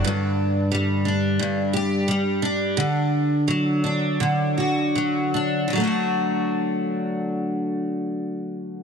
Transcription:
\new Staff \with { instrumentName = "Steel-string acoustic guitar" } { \clef bass \time 4/4 \key d \major \tempo 4 = 81 g,4 g8 d'8 g,8 g'8 g8 d'8 | d4 fis8 d'8 d8 fis'8 fis8 d'8 | <d fis a d' fis'>1 | }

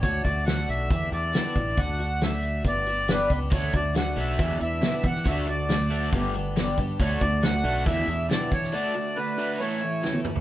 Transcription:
<<
  \new Staff \with { instrumentName = "Accordion" } { \time 4/4 \key d \major \tempo 4 = 138 cis''8 d''8 fis''8 e''4 d''4. | fis''4 e''4 d''4 b'8. r16 | cis''8 d''8 fis''8 e''4 e''4 fis''8 | e''8 d''4. r2 |
cis''8 d''8 fis''4 e''4 d''8 cis''8 | d''4 b'4 cis''4. r8 | }
  \new Staff \with { instrumentName = "Twelve-string acoustic guitar" } { \time 4/4 \key d \major <d a d' fis'>8 <a d' fis'>8 <d a d' fis'>4 <e g d' e'>8 <e g d' e'>8 <e, b, e g d' e'>8 <e g d' e'>8 | <d a d' fis'>8 <a d' fis'>8 <d a d' fis'>4 <g b d' g'>8 <g b d' g'>8 <g, d g b d' g'>8 <g b d' g'>8 | <d a d' fis'>8 <a d' fis'>8 <d a d' fis'>4 <e g d' e'>8 <e g d' e'>8 <e, b, e g d' e'>8 <e g d' e'>8 | <d a d' fis'>8 <a d' fis'>8 <d a d' fis'>4 <g b d' g'>8 <g b d' g'>8 <g, d g b d' g'>8 <g b d' g'>8 |
<d a d' fis'>8 <a d' fis'>8 <d a d' fis'>4 <e g d' e'>8 <e g d' e'>8 <e, b, e g d' e'>8 <e g d' e'>8 | <d a d' fis'>8 <a d' fis'>8 <d a d' fis'>4 <e a cis' e'>8 <a cis' e'>8 <a, e a cis' e'>8 <a cis' e'>8 | }
  \new Staff \with { instrumentName = "Overdriven electric guitar" } { \clef bass \time 4/4 \key d \major r1 | r1 | <d a d'>8 <d a>8 <d a>8 <d a d'>8 <e, b, e>8 <e, b,>8 <e, b,>8 <e, b,>8 | <d a d'>8 <d a>8 <d a>8 <d a d'>8 <g, d g>8 <g, d>8 <g, d>8 <g, d>8 |
<d a d'>8 <d a>8 <d a>8 <d a d'>8 <e, b, e>8 <e, b,>8 <e, b,>8 <e, b,>8 | <d a d'>8 <d a>8 <d a>8 <d a d'>8 <a, e a>8 <a, e>8 <a, e>8 <a, e>8 | }
  \new Staff \with { instrumentName = "Fingered electric bass" } { \clef bass \time 4/4 \key d \major d,8 d,4 b,,8 e,8 e,8 r8 a,,8 | d,2 g,,4. cis,8 | d,8 d,4 b,,8 e,8 e,8 r8 e8 | d,2 g,,4. g,8 |
d,8 d,4 b,,8 e,8 e,8 r8 e8 | r1 | }
  \new DrumStaff \with { instrumentName = "Drums" } \drummode { \time 4/4 <hh bd>8 <hh bd>8 <hh sn>8 hh8 <hh bd>8 hh8 <hh sn>8 <hh bd>8 | <hh bd>8 hh8 <hh sn>8 hh8 <hh bd>8 hh8 <hh sn>8 <hh bd>8 | <hh bd>8 <hh bd>8 <hh sn>8 hh8 <hh bd>8 hh8 <hh sn>8 <hh bd>16 sn16 | <hh bd>8 hh8 <hh sn>8 hh8 <hh bd>8 hh8 <hh sn>8 <hh bd>8 |
<hh bd>8 <hh bd>8 <hh sn>8 hh8 <hh bd>8 hh8 <hh sn>8 <hh bd>16 sn16 | r4 r4 r4 sn16 tommh16 toml16 tomfh16 | }
>>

